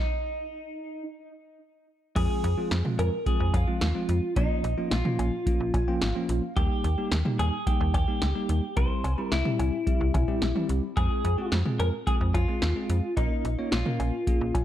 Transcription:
Already playing: D#4
2.16 F2 F3 G#3 C4 F4 G#4, kick, closed hi-hat, crash
2.44 F2, closed hi-hat
2.58 F3 G#3 C4 F4
2.71 F2, snare, closed hi-hat
2.85 F3 G#3 C4 F4, mid tom
2.99 F2 A#4, closed hi-hat, cowbell
3.26 F3 G#3 C4 F4 G#4, kick, closed hi-hat
3.40 F2
3.54 F2 F4, kick, closed hi-hat, cowbell
3.68 F3 G#3 C4 F4
3.81 D#2, snare, closed hi-hat
3.95 F3 G#3 C4 F4
4.09 F2, closed hi-hat
4.36 A#1 F3 A#3 C#4 D#4 F4, kick, closed hi-hat
4.64 A#1, closed hi-hat
4.78 F3 A#3 C#4 F4
4.91 A#1 F4, snare, closed hi-hat
5.05 F3 A#3 C#4 F4, mid tom
5.19 A#1, closed hi-hat, cowbell
5.46 F3 A#3 C#4 F4, kick, closed hi-hat
5.60 A#1
5.74 A#1 G#5, kick, closed hi-hat, cowbell
5.88 F3 A#3 C#4 F4 G5
6.01 G#1 F5, snare, closed hi-hat
6.15 F3 A#3 C#4 F4
6.29 A#1, closed hi-hat
6.57 D#2 G3 A#3 D#4 G4, kick, closed hi-hat
6.84 D#2, closed hi-hat
6.98 G3 A#3 D#4 G4
7.12 D#2, snare, closed hi-hat
7.25 G3 A#3 D#4 G4, mid tom
7.39 D#2 G#4, closed hi-hat, cowbell
7.67 G3 A#3 D#4 G4, kick, closed hi-hat
7.80 D#2
7.94 D#2 G4, kick, closed hi-hat, cowbell
8.08 G3 A#3 D#4 G4
8.22 C#2, snare, closed hi-hat
8.35 G3 A#3 D#4 G4
8.49 D#2, closed hi-hat
8.77 C2 G3 C4 E4 G4 C5, kick, closed hi-hat
9.04 C2, closed hi-hat, cowbell
9.18 G3 C4 E4 G4 A#4
9.32 C2 E4, snare, closed hi-hat
9.45 G3 C4 E4 G4, mid tom
9.59 C2, closed hi-hat, cowbell
9.87 G3 C4 E4 G4, kick, closed hi-hat
10.01 C2
10.14 C2, kick, closed hi-hat, mid tom, cowbell
10.28 G3 C4 E4 G4
10.42 A#1, snare, closed hi-hat
10.55 G3 C4 E4 G4, mid tom
10.69 C2, closed hi-hat
10.97 F2 G#3 C4 F4 G#4, kick, closed hi-hat
11.24 F2, closed hi-hat
11.38 G#3 C4 F4 G4
11.52 F2, snare, closed hi-hat
11.66 G#3 C4 F4 G#4, mid tom
11.79 F2 A#4, closed hi-hat, cowbell
12.07 G#3 C4 F4 G#4, kick, closed hi-hat
12.21 F2
12.34 F2 F4, kick, closed hi-hat, cowbell
12.48 G#3 C4 F4 G#4
12.62 D#2, snare, closed hi-hat
12.76 G#3 C4 F4 G#4
12.90 F2, closed hi-hat
13.17 A#1 A#3 C#4 D#4 F4 A#4, kick, closed hi-hat
13.45 A#1, closed hi-hat
13.59 A#3 C#4 F4 C#5
13.72 A#1 F4, snare, closed hi-hat
13.86 A#3 C#4 F4 A#4, mid tom
14.00 A#1, closed hi-hat, cowbell
14.27 A#3 C#4 F4 G#4, kick, closed hi-hat
14.41 A#1
14.55 A#1, kick, closed hi-hat, cowbell

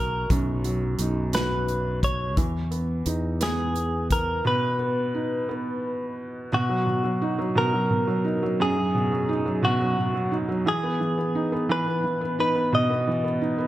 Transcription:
Already playing: B1 B2 F#3 D#4 F#4 A#4
0.30 B1 F#2, kick, closed hi-hat
0.64 F#3, closed hi-hat
0.99 B1 D#4, closed hi-hat
1.33 F#4 B4, snare, closed hi-hat
1.68 closed hi-hat
2.03 C#5, kick, closed hi-hat
2.37 E2 E3, kick, closed hi-hat
2.71 B3, closed hi-hat
3.06 E2 D#4, closed hi-hat
3.41 B3 G#4, snare, closed hi-hat
3.76 closed hi-hat
4.11 A#4, kick, closed hi-hat
4.45 B2 B4
4.79 B3
5.14 D#4
5.49 B3
6.52 B2 F#4
6.69 F#3
6.87 B2
7.04 F#3
7.22 D#4
7.38 F#3
7.55 B2 A#4
7.73 F#3
7.90 B2
8.07 F#3
8.24 D#4
8.43 F#3
8.60 F#2 G#4
8.77 F#3
8.95 B2
9.12 F#3
9.29 D#4
9.46 F#3
9.63 B2 F#4
9.80 F#3
9.97 B2
10.14 F#3
10.32 D#4
10.49 F#3
10.66 E3 G#4
10.83 B3
11.00 E3
11.18 B3
11.35 D#4
11.52 B3
11.69 E3 B4
11.86 B3
12.04 E3
12.21 B3
12.39 D#4 B4
12.55 B3
12.72 B2 D#5
12.90 B3
13.07 E3
13.24 B3
13.41 D#4
13.58 B3

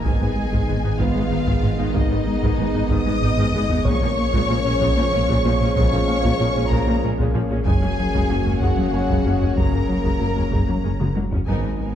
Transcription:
Already playing: G#4
0.03 G#1 G#2 D#3 G#3 B3 D#4 G#4 G#5, taiko
0.07 B3 G#4 D#5
0.20 G#2 G#3 B3
0.36 G#3
0.52 G#2 D#3 G#3, taiko
0.67 G#1 G#2 G#3 B3 G#4
0.84 G#2 B3 D#4
0.99 G#1 G#2 D#3 G#3 B3 F4 B4 F5, taiko
1.15 G#2 G#3 B3 D#4
1.31 G#1 G#2 B3 D#4
1.47 G#2 D#3 G#3, taiko
1.62 G#1 G#2 G#3 B3 G#4
1.79 G#2 B3 D#4 G#4
1.94 G#1 G#2 D#3 G#3 D#4 D#5, taiko
2.11 G#2 G#3 B3
2.27 G#3
2.42 G#2 D#3 G#3, taiko
2.58 G#1 G#2 G#3 B3 G#4
2.75 G#2 B3 D#4
2.89 G#1 G#2 D#3 G#3 G#4 D#5 D#6, taiko
3.06 G#2 G#3 B3 D#4
3.22 G#1 G#2 B3 D#4
3.37 G#2 D#3 G#3, taiko low-mid
3.53 G#1 G#2 G#3 B3 G#4, taiko low-mid
3.69 G#2 B3 D#4 G#4, taiko low
3.85 A#1 A#2 C#3 F3 G#3 A#3 C#4 G#4 C#5 C#6, taiko
4.01 A#2 F3 A#3 C#4
4.17 A#3
4.33 A#2 C#3 G#3 A#3, taiko
4.48 A#1 A#2 F3 A#3 G#4
4.65 A#2 G#3 C#4
4.80 A#1 A#2 C#3 G#3 A#3, taiko
4.96 A#2 F3 A#3 F4
5.12 A#1 A#2 G#3 C#4
5.28 A#2 C#3 G#3 A#3, taiko
5.44 A#1 A#2 F3 A#3 G#4
5.60 A#2 G#3 C#4 G#4
5.75 A#1 A#2 C#3 G#3 A#3 C#5 C#6, taiko
5.92 A#2 F3 A#3 C#4
6.08 A#3 F5
6.23 A#2 C#3 G#3 A#3, taiko
6.39 A#1 A#2 F3 A#3 G#4
6.55 A#2 G#3 C#4
6.70 A#1 A#2 C#3 G#3 A#3 A#4 A#5, taiko
6.87 A#2 F3 A#3 F4
7.03 A#1 A#2 G#3 C#4
7.18 A#2 C#3 G#3 A#3, taiko
7.34 A#1 A#2 F3 A#3 G#4
7.50 A#2 G#3 C#4 G#4
7.65 F#1 F#2 C#3 F#3 G#3 A#3 C#4 G#4 C#5 G#5, taiko
7.82 F#2 F#3 A#3
8.00 F#3
8.13 F#2 C#3 F#3 G#3, taiko
8.30 F#1 F#2 F#3 A#3 F#4
8.46 F#2 G#3 A#3 C#4, taiko low
8.61 F#1 F#2 C#3 F#3 G#3 F#4 F#5, taiko
8.77 F#2 F#3 A#3 C#4, taiko low
8.93 F#1 F#2 G#3 A#3 C#4 G#5
9.09 F#2 C#3 F#3 G#3, taiko
9.25 F#1 F#2 F#3 A#3 F#4
9.40 F#2 G#3 C#4 F#4, taiko low
9.56 F#1 F#2 C#3 F#3 G#3 A#4 A#5, taiko
9.72 F#2 F#3 A#3
9.89 F#3
10.04 F#2 C#3 F#3 G#3, taiko
10.20 F#1 F#2 F#3 A#3 F#4
10.36 F#2 G#3 A#3 C#4, taiko low
10.52 F#1 F#2 C#3 F#3 G#3, taiko
10.67 F#2 F#3 A#3 C#4, taiko low
10.84 F#1 F#2 G#3 A#3 C#4
11.00 F#2 C#3 F#3 G#3, taiko mid
11.15 F#1 F#2 F#3 A#3 F#4, taiko high
11.31 F#2 G#3 C#4 F#4, taiko low
11.46 G#1 G#2 G#3 B3 D#4 G#4 A#4 G#5, taiko
11.62 G#3 D#4
11.78 G#3 B3 D#4 A#4 G#5

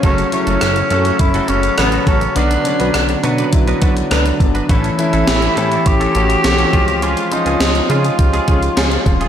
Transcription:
0.03 F#1 C#3 F#3 A3 C#4 F#4 A4, kick, closed hi-hat
0.18 closed hi-hat
0.32 C#3 F#3 A3 C#4 E4, muted clean electric guitar stroke, closed hi-hat
0.47 F#1 A3 C#4 F#4 A4, closed hi-hat
0.61 F#1 C#3 F#3 A3 C#4, muted clean electric guitar stroke, cross-stick, closed hi-hat
0.76 muted clean electric guitar stroke, closed hi-hat
0.90 F#2 C#3 F#3 A3 C#4 F#4 A4, closed hi-hat
1.05 A3 C#4 F#4 A4, closed hi-hat
1.19 F#1 C#3 F#3 A3 C#4 E4, muted clean electric guitar stroke, kick, closed hi-hat
1.34 A3 C#4 F#4 A4, closed hi-hat
1.48 F#1 C#3 F#3 A3 C#4 F#4 A4, closed hi-hat
1.63 muted clean electric guitar stroke, closed hi-hat
1.77 A1 C#3 F#3 A3 B3 C#4, muted clean electric guitar stroke, cross-stick, closed hi-hat
1.92 A3 C#4 F#4 A4, closed hi-hat
2.06 A1 C#3 F#3 A3 C#4 F#4 A4, kick, closed hi-hat
2.21 muted clean electric guitar stroke, closed hi-hat
2.35 B1 D3 F#3 B3 D4 F#4 B4, closed hi-hat
2.51 closed hi-hat
2.64 D3 F#3 B3 C#4, muted clean electric guitar stroke, closed hi-hat
2.80 B1 B3 D4 F#4 B4, closed hi-hat
2.93 B1 D3 F#3 B3 D4, muted clean electric guitar stroke, cross-stick, closed hi-hat
3.09 muted clean electric guitar stroke, closed hi-hat
3.23 B2 D3 F#3 B3 D4 F#4 B4, closed hi-hat
3.38 B3 D4 F#4 B4, closed hi-hat
3.52 B1 D3 F#3 B3 E4, muted clean electric guitar stroke, kick, closed hi-hat
3.67 B3 D4 F#4 B4, closed hi-hat
3.81 B1 D3 F#3 B3 D4 F#4 B4, kick, closed hi-hat
3.97 muted clean electric guitar stroke, closed hi-hat
4.10 C#2 D3 F#3 B3 D4 F#4 B4, cross-stick, closed hi-hat
4.26 muted clean electric guitar stroke, closed hi-hat
4.40 G1 D3 F#3 B3 D4, muted clean electric guitar stroke, kick, closed hi-hat
4.55 B3 D4 F#4 B4, closed hi-hat
4.69 A1 E3 A3 C#4 E4 A4, kick, closed hi-hat
4.84 closed hi-hat
4.98 E3 A3 C#4 E4, muted clean electric guitar stroke, closed hi-hat
5.13 A1 A3 C#4 E4 A4, closed hi-hat
5.27 A1 E3 A3 C#4 G4, snare, closed hi-hat
5.42 muted clean electric guitar stroke, closed hi-hat
5.56 A2 E3 A3 C#4 E4 G4 A4, closed hi-hat
5.71 A3 C#4 E4 A4, closed hi-hat
5.86 A1 E3 A3 C#4 E4 G4, kick, closed hi-hat
6.00 A3 C#4 E4 A4, closed hi-hat
6.15 A1 E3 A3 C#4 E4 F#4 A4, closed hi-hat
6.30 muted clean electric guitar stroke, closed hi-hat
6.44 B1 E3 A3 C#4 F#4, muted clean electric guitar stroke, snare, closed hi-hat
6.59 A3 C#4 E4 A4, closed hi-hat
6.73 C#2 F3 G#3 C#4 F4 G#4, kick, closed hi-hat
6.88 muted clean electric guitar stroke, closed hi-hat
7.02 G#3 C#4 F4 G#4, closed hi-hat
7.17 closed hi-hat
7.31 F3 G#3 C#4 D#4 F4, muted clean electric guitar stroke, closed hi-hat
7.46 C#2 G#3 C#4 F4 G#4, closed hi-hat
7.60 C#2 F3 G#3 C#4 F4, snare, closed hi-hat
7.75 muted clean electric guitar stroke, closed hi-hat
7.89 C#3 F3 G#3 C#4 D#4 F4 G#4, closed hi-hat
8.04 G#3 C#4 F4 G#4, closed hi-hat
8.18 C#2 F3 G#3 C#4 G4, muted clean electric guitar stroke, kick, closed hi-hat
8.33 G#3 C#4 F4 G#4, closed hi-hat
8.47 C#2 F3 G#3 C#4 F4 G#4, kick, closed hi-hat
8.63 muted clean electric guitar stroke, closed hi-hat
8.76 C#2 F3 G#3 C#4 F4 G#4, snare, closed hi-hat
8.91 muted clean electric guitar stroke, closed hi-hat
9.05 D#1 F3 G#3 C#4 F4, muted clean electric guitar stroke, kick, closed hi-hat
9.20 G#3 C#4 F4 G#4, closed hi-hat

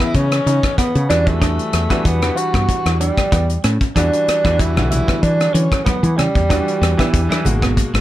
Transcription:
Already playing: C#3 E3 B3 E4 D#5
0.00 B3, kick, cross-stick
0.14 C#3 C#4, kick, closed hi-hat
0.31 cross-stick, closed hi-hat
0.46 C#3 D#4, closed hi-hat
0.63 kick, cross-stick, closed hi-hat
0.78 B3, muted fretless electric bass stroke, kick, cross-stick, closed hi-hat
0.95 C#3, closed hi-hat
1.09 E2 E3 G3 C#4 D4 F#4, cross-stick, closed hi-hat
1.27 A3, kick, closed hi-hat
1.41 D4, kick, cross-stick, closed hi-hat
1.59 closed hi-hat
1.73 E2, cross-stick, closed hi-hat
1.90 E3 G3 B3 D4 F#4, kick, cross-stick, closed hi-hat
2.05 E2 B3, kick, closed hi-hat
2.22 E3 G3 D4 F#4, cross-stick, closed hi-hat
2.37 F#4, closed hi-hat
2.54 G2 B3, kick, cross-stick, closed hi-hat
2.69 kick, closed hi-hat
2.86 E2, cross-stick, closed hi-hat
3.00 G3 D4, closed hi-hat
3.17 kick, cross-stick, closed hi-hat
3.32 E2 B3, kick, cross-stick, closed hi-hat
3.49 closed hi-hat
3.64 A2 C#4, cross-stick, closed hi-hat
3.81 kick, closed hi-hat
3.96 E2 E3 G3 D4 F#4, kick, cross-stick, closed hi-hat
4.13 closed hi-hat
4.28 muted fretless electric bass stroke, cross-stick, closed hi-hat
4.44 E2 E3 G3 B3 D4 F#4, kick, cross-stick, closed hi-hat
4.59 E4, kick, closed hi-hat
4.76 B1 D3 E3 G3 F#4, cross-stick, high conga
4.90 E4, closed hi-hat, low conga
5.08 B3, kick, cross-stick
5.22 E3 D4, kick, closed hi-hat
5.40 cross-stick, closed hi-hat
5.53 D3 E3 C#4, closed hi-hat
5.72 kick, cross-stick, closed hi-hat
5.84 B3, muted fretless electric bass stroke, kick, cross-stick, closed hi-hat, high conga
6.03 E3, closed hi-hat, high conga
6.17 G3 C#4, cross-stick, closed hi-hat, low conga
6.35 E2, kick, closed hi-hat
6.49 E3 G3 D4 F#4, kick, cross-stick, closed hi-hat
6.68 closed hi-hat
6.81 E2, cross-stick, closed hi-hat
6.97 E3 G3 B3 D4 E4, kick, cross-stick, closed hi-hat
7.14 E2, kick, closed hi-hat
7.29 E3 G3 D4 E4, cross-stick, closed hi-hat, high conga
7.44 G#1 B2 G#3 A#3 F#4, closed hi-hat, low conga
7.62 B3, kick, cross-stick, closed hi-hat
7.77 kick, closed hi-hat
7.94 G#1, cross-stick, closed hi-hat

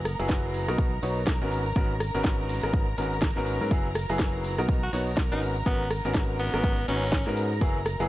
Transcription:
Already playing: F#1 A#4 A#5
0.05 cross-stick, open hi-hat, tambourine
0.19 F#1 F#3 B3 E4 F#4 G#4, tambourine
0.29 kick, snare, tambourine
0.54 open hi-hat, tambourine
0.68 B1 B2 B3 D#4 F#4 A#4, cross-stick, tambourine
0.78 kick, tambourine
1.03 B1 B2 B3 D#4 F#4 C#5, open hi-hat, tambourine
1.17 tambourine
1.27 kick, snare, tambourine
1.42 G#1 G#2 B3 C#4 F#4 A#4
1.51 open hi-hat, tambourine
1.66 tambourine
1.76 G#2 B3 C#4 F#4 A#4, kick, tambourine
2.00 cross-stick, open hi-hat, tambourine
2.15 G#1 G#2 B3 C#4 F#4 A#4, tambourine
2.24 kick, snare, tambourine
2.49 open hi-hat, tambourine
2.63 G#1 G#2 B3 C#4 F#4 A#4, cross-stick, tambourine
2.74 kick, tambourine
2.98 G#1 G#2 B3 C#4 F#4 A#4, open hi-hat, tambourine
3.13 tambourine
3.22 kick, snare
3.36 G#1 G#2 B3 C#4 F#4 A#4, snare
3.47 open hi-hat, tambourine
3.61 G#2 F#3 B3 C#4 F#4 A#4, tambourine
3.71 F#1 F#3 B3 E4 F#4 G#4, kick, tambourine
3.95 cross-stick, open hi-hat, tambourine
4.10 F#1 F#3 B3 E4 F#4 G#4, tambourine
4.19 kick, snare
4.44 open hi-hat, tambourine
4.58 B1 B2 B3 D#4 F#4 A#4, cross-stick, tambourine
4.69 kick, tambourine
4.83 F#4
4.93 B1 B2 B3 D#4 F#4 C#5, open hi-hat, tambourine
5.07 tambourine
5.17 kick, snare
5.32 G#1 G#2 B3 C#4 D#4 F#4 A#4
5.42 open hi-hat, tambourine
5.56 tambourine
5.66 G#2 B3 C#4 F#4 A#4, kick
5.90 cross-stick, open hi-hat, tambourine
6.05 G#1 G#2 B3 C#4 F#4 A#4, tambourine
6.14 kick, snare
6.39 B3, open hi-hat, tambourine
6.54 G#1 G#2 B3 C#4 F#4 A#4, cross-stick, tambourine
6.64 kick, tambourine
6.88 G#1 G#2 B3 C#4 F#4 C#5, open hi-hat, tambourine
7.03 tambourine
7.12 kick, snare, tambourine
7.26 G#2 B3 C#4 F#4 A#4, snare
7.37 open hi-hat, tambourine
7.52 tambourine
7.61 F#1 F#3 B3 E4 F#4 G#4, kick, tambourine
7.85 cross-stick, open hi-hat, tambourine
8.00 F#1 F#3 B3 E4 F#4 G#4, tambourine

